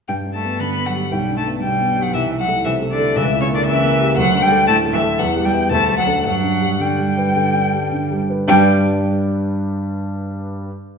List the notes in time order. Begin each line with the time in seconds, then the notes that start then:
0.08 G2 G3 G5
0.26 D4
0.34 A3 A5
0.44 B3
0.60 D3 B3 B5
0.78 B3
0.86 F#3 F#5
0.95 G4
1.11 B1 G3 G5
1.29 D4
1.37 A3 A5
1.46 B3
1.62 B2 G3 G5
1.80 B3
1.97 G4
2.01 F#3 F#5
2.14 C2 E3 E5
2.31 E4
2.39 F#3 F#5
2.48 A3
2.65 C3 E3 E5
2.82 A3
2.91 D3 D5
2.99 A4
3.16 C#2 E3 E5
3.33 E4
3.42 C#3 C#5
3.50 A#3
3.54 D3 D5
3.66 C#3 E3 E5
3.83 A#3
4.01 G4
4.17 D2 F#3 F#5
4.34 D4
4.42 G3 G5
4.51 A3
4.68 A2 A3 A5
4.85 A3
4.93 E3 E5
5.02 A4
5.19 E2 F#3 F#5
5.36 G3
5.45 G3 G5
5.53 B3 E4
5.71 D2 A3 A5
5.89 F#3
5.98 F#3 F#5
6.07 D4 A4
6.25 G2 F#3 F#5
6.43 D4
6.62 G3
6.80 D3 G3 G5
6.99 G3
7.17 B4
7.36 D3
7.55 D4
7.74 G3
7.92 D3
8.11 G3
8.30 B4
8.47 G2 G3 D4 B4 D5 G5